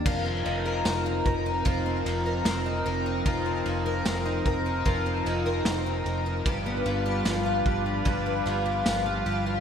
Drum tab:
CC |x-------|--------|--------|
RD |-xxxxxxx|xxxxxxxx|xxxxxxxx|
TB |--x---x-|--x---x-|--x---x-|
SD |--o---o-|--o---o-|--o---o-|
BD |o--oo---|o--oo---|o--oo---|